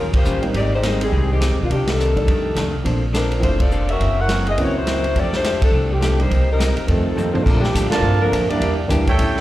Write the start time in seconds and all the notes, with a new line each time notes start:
Already playing: D#2 D#3 G3 C#4 F4 A#4
0.13 A#3 F4 G4 C5, kick, ride
0.24 A1 D#3 G3 C#4 F4, hi-hat pedal
0.42 G3 A#3 C4 D#4, ride
0.53 G#1 G#2 G3 A#3 C4 D#4 G4 D5, kick, ride
0.74 G#3 D#4 G4 C5
0.81 G#2 G3 A#3 C4 D#4, snare, hi-hat pedal, ride
1.01 D#3 G3 C4 G#4, ride
1.11 C2 G#2 G3 C4 D#4, kick
1.32 D#3 G#3 C4 G4
1.40 G#2 G3 C4 D#4, snare, hi-hat pedal, ride
1.51 D#2
1.61 B1 G3 A#3 D4 F4
1.68 C2 C3 D#3 A#3 D4 G4, kick, ride
1.73 D#3 A#3 D4
1.87 G3 D4 D#4 A4, snare, ride
1.99 C3 D#3 A#3 D4, hi-hat pedal
2.16 D#3 G3 A3 D5, kick, ride
2.27 F2 D#3 A3 D4, kick, ride
2.54 C2 F2 D#3 A3 D4, snare, hi-hat pedal, ride
2.84 A#1 F3 A3 A#3 C4 D4 A4 C5, kick, ride
3.13 F3 A#3 C4 D4 A4 A#4 C5, snare, hi-hat pedal, ride
3.32 ride
3.40 F1 F3 A3 A#3 C4 D4 E4 F4 A4 C5, kick, ride
3.44 A3 C5
3.60 C4 F4 A4 D5, kick, ride
3.71 A#3 D4 A4 C5, hi-hat pedal
3.89 C#4 F#4 A#4 E5, ride
3.99 F#1 F#2 E3 A#3 C4, kick, ride
4.19 E4 A#4 C#5 F#5
4.28 F#2 E3 A#3 C4, snare, hi-hat pedal, ride
4.47 C4 E4 G#4 D#5, ride
4.56 C#2 F#2 E3 A#3 C4 C#4, kick, ride
4.61 A#3 E4 F#4 C#5
4.77 A#3 E4 F#4 C5
4.86 F#2 E3 A#3 C4, snare, hi-hat pedal, ride
5.04 ride
5.15 F2 F3 A3 D4 G4 A4 D5, kick, ride
5.19 C4
5.33 A3 D4 G4 C5, snare
5.44 F3 A3 D4 G4, snare, hi-hat pedal, ride
5.62 G3 C4 D4 A4, muted upright bass stroke, kick, ride
5.72 C2 F3 A3 D4 G4
5.92 D3 A3 C4 G4
6.01 F3 A3 D4 G4, snare, hi-hat pedal, ride
6.18 G3 A#3 D4 D#4 C5, ride
6.22 A#3 G4
6.28 C2 C3 G3 A#3 D#4, kick, ride
6.52 G3 C4 D#4 A#4
6.58 C3 G3 A#3 D#4, snare, hi-hat pedal, ride
6.77 muted upright bass stroke, ride
6.86 F2 C3 D#3 A3 C4 D#4 A4, kick, ride
6.90 F3
7.16 F2 D#3 G3 A3 A#3 C4 D#4 A#4, floor tom, hi-hat pedal
7.33 A#2 D#3 F3 A3 C4 D4 D#4 F4 C5, floor tom
7.42 A#2 D3 F3 A3 A#3 D4 A4 A#4, kick
7.47 D4, crash
7.60 A2 D3 F3 G3 A#3 D4 G4, snare
7.74 A2 A#2 F3 A3 D4, kick, hi-hat pedal, ride
7.90 A2 D3 F3 A3 A#3 C4 D4 F4 A4 A#4 D5 F5 A5, snare, ride
8.02 G2 A#2 F3 A3 D4
8.20 D3 F3 A3 A#3 D4 A#4
8.31 F2 A#2 F3 A3 D4, kick, hi-hat pedal, ride
8.49 G3 A#3 D4 E4 G4 D5, ride
8.60 E2 E3 A#3 D4 G4, kick, ride
8.88 D2 E3 G3 A#3 D4 E4 G4, kick, hi-hat pedal, ride
9.07 A4 C#5 E5 G5, kick, ride
9.17 A1 A2 G3 C#4 E4, kick, ride
9.37 E3 G3 C#4, snare